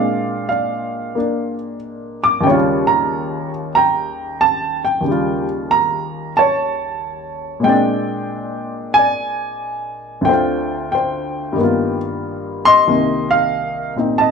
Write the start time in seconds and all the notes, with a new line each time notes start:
Already playing: A#2 G#3 C4 D4 D5 F5
0.49 D5 F5
1.15 A#3 D4
2.24 D6
2.41 D#2 C#3 G5
2.47 G3 C#5
2.51 F4
2.87 A#5
3.75 G5 A#5
4.41 A5
4.85 G5
5.01 D#2 C#3
5.08 G3 F4
5.71 A#5
6.37 C#5 A5
7.60 A#2 G#3
7.64 C4 G5
7.69 D4 D5
8.94 G#5
8.99 D5
10.21 D2 D3 G5
10.29 C4 F4 C5
10.92 C5 G5
11.53 G2 D#3
11.58 A#3 B3
11.64 F4
12.65 D#5 C6
12.87 C2 C3 D#3 A#3
13.31 F5
13.96 A#2 C4 D#4
14.18 D#5 A5